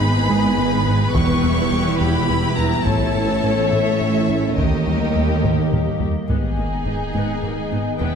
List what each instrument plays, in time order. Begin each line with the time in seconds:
Already playing: double bass section G#1, cello section G#2, ambient pad D#3 B3 G#4 B4, viola section B3 D#4, violin section G#4 B4 B5
0.01 analog synth bass G#2, synth pluck B3
0.29 analog synth bass G#2, synth pluck G#3
0.58 analog synth bass G#2, synth pluck B3
0.86 analog synth bass G#2, synth pluck B3
1.14 double bass section E1, cello section E2, analog synth bass E2, ambient pad E3 G4, synth pluck E3, viola section E4, violin section G4 C#6, taiko
1.43 analog synth bass E2, synth pluck G3
1.72 analog synth bass E2, synth pluck G3
2.00 analog synth bass E2, synth pluck E3, violin section B5
2.30 analog synth bass E2, synth pluck G3
2.58 analog synth bass E2, synth pluck G3, violin section A#5
2.85 double bass section A1, cello section A2, analog synth bass A2, viola section A3, ambient pad A3 A4 C#5, synth pluck A3, violin section A4 C#5 A5, taiko
3.15 analog synth bass A2, synth pluck C#4
3.44 analog synth bass A2, synth pluck C#4
3.72 analog synth bass A2, synth pluck A3, violin section E5
4.01 analog synth bass A2, synth pluck C#4
4.30 analog synth bass A2, synth pluck C#4
4.57 analog synth bass D#2, cello section D#2, double bass section D#2, ambient pad D#3 A#3 G4 D#5, synth pluck D#3, viola section A#3 D#4, violin section G4 A#4 D#5, taiko
4.87 analog synth bass D#2, synth pluck G3
5.15 analog synth bass D#2, synth pluck G3
5.43 analog synth bass D#2, synth pluck D#3, taiko low-mid
5.72 analog synth bass D#2, synth pluck G3, taiko low-mid
6.00 analog synth bass D#2, synth pluck G3, taiko low
6.28 double bass section G#1, analog synth bass G#2, cello section G#2, ambient pad D#3 B3 G#4 D#5, synth pluck G#3, viola section B3 D#4, violin section G#4 G#5, taiko, sub drop
6.57 double bass section G#1, cello section G#2, analog synth bass G#2, viola section A#3, synth pluck B3
6.86 double bass section G#1, analog synth bass G#2, cello section G#2, viola section B3, synth pluck G#4
7.14 double bass section G#1, cello section G#2, analog synth bass G#2, synth pluck G#3, viola section B3
7.43 double bass section G#1, analog synth bass G#2, cello section G#2, viola section A#3, synth pluck G#4
7.71 double bass section G#1, cello section G#2, analog synth bass G#2, synth pluck B3, viola section B3
7.99 double bass section E1, cello section E2, analog synth bass E2, synth pluck E3, ambient pad E3 G4 B4, viola section B3 E4, violin section B4 G5